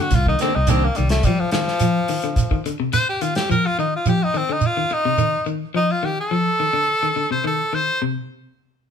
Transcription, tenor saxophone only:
0.01 F#4
0.15 F4
0.29 D#4
0.41 C4
0.55 D#4
0.70 C4
0.84 A#3
0.97 G3
1.10 A3
1.25 G3
1.40 F3
1.52 F3
2.93 C5
3.09 G4
3.22 F4
3.36 G4
3.51 A#4
3.66 F4
3.79 D#4
3.96 F4
4.09 G4
4.23 D#4
4.38 C4
4.53 D#4
4.66 F4
4.93 D#4
5.76 D#4
5.92 F4
6.05 G4
6.21 A4
7.32 C5
7.47 A4
7.75 C5

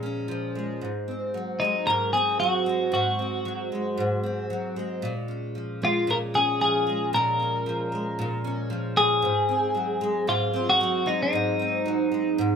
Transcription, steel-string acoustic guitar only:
Already playing: A#2 F3 G#3
0.03 C#4
0.28 F3
0.55 G#3
0.81 G#2
1.08 C4
1.34 F#3
1.61 G#3
1.87 G#2
2.14 C4
2.40 F#3
2.66 G#3
2.92 G#2
3.19 C4
3.45 F#3
3.72 G#3
3.98 G#2
4.23 C4
4.50 F#3
4.76 G#3
5.02 A#2
5.28 C#4
5.55 F3
5.82 G#3
6.07 A#2
6.34 C#4
6.61 F3
6.87 G#3
7.13 A#2
7.40 C#4
7.66 F3
7.92 G#3
8.19 A#2
8.44 C#4
8.70 F3
8.97 G#3
9.22 G#2
9.49 C4
9.75 F#3
10.01 G#3
10.27 G#2
10.53 C4
10.81 F#3
11.06 G#3
11.33 G#2
11.59 C4
11.86 F#3
12.12 G#3
12.38 G#2

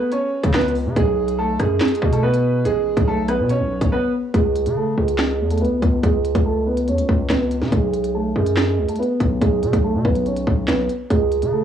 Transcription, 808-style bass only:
0.43 C#3
0.54 C#2
0.86 C#3
0.96 B1
1.60 F#2
2.02 B2
2.65 A1
2.97 B1
3.39 B2
3.60 B1
3.82 B1
4.34 C#2
4.66 C#3
4.98 C#2
5.40 E2
5.61 C#2
5.82 C#2
6.03 C#2
6.35 C#2
6.88 E2
6.98 C#2
7.09 C#2
7.30 C#2
7.62 C#3
7.72 B1
8.36 F#2
8.78 C#2
9.20 B1
9.41 B1
9.62 B2
9.73 B1
9.94 B2
10.05 B1
10.47 B1
10.68 B1
11.10 C#2
11.42 C#3

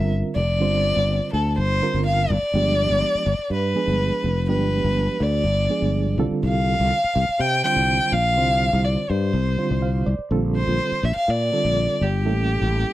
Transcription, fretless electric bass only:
0.00 G1
0.36 F1
0.60 G1
0.96 G1
1.33 D2
1.58 G1
1.94 G1
2.30 G1
2.42 muted fretless electric bass stroke
2.53 G1
2.90 G1
3.15 muted fretless electric bass stroke
3.26 G1
3.50 G2
3.87 G1
4.24 F1
4.48 G1
4.84 G1
5.20 D2
5.44 G1
5.82 G1
6.18 C2
6.31 muted fretless electric bass stroke
6.43 C2
6.80 C2
7.04 muted fretless electric bass stroke
7.15 C2
7.39 C3
7.76 C2
8.12 A#1
8.37 C2
8.73 C2
9.10 G2
9.33 C2
9.70 C2
10.06 C2
10.19 muted fretless electric bass stroke
10.31 A#1
10.67 A#1
10.92 muted fretless electric bass stroke
11.03 A#1
11.16 muted fretless electric bass stroke
11.28 A#2
11.64 A#1
12.01 G1
12.25 A1
12.61 A1

